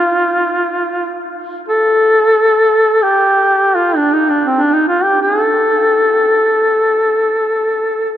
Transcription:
Already playing: F4
1.69 A4
3.03 G4
3.75 F4
3.96 D4
4.14 D#4
4.30 D4
4.43 C4 D4
4.58 D4
4.73 D#4
4.88 F4
5.04 G4
5.22 G#4
5.41 A4

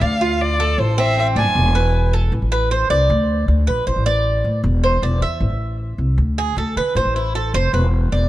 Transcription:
0.01 D2 D5 F5
0.21 F4
0.41 D5
0.60 A4
0.78 A1 C5
0.98 C4 E5
1.18 E5
1.36 A1 D4 G#5
1.46 F1
1.55 E1
1.75 B4
2.13 A4
2.32 A1
2.42 A1
2.52 B4
2.71 C5
2.90 C2 D5
3.10 D2
3.48 D2
3.67 A#1 B4
3.87 A1 C5
3.96 A1
4.06 D5
4.44 A2
4.64 E1
4.84 C5
5.02 E1 D5
5.21 E2 E5
5.40 A1
5.50 A1
5.98 C2
6.18 D2
6.38 G#4
6.56 D2 A4
6.76 D3 B4
6.95 A1 C5
7.05 A1
7.16 E4
7.35 A4
7.54 F1 C5
7.73 E1 B4
8.12 E1 D5

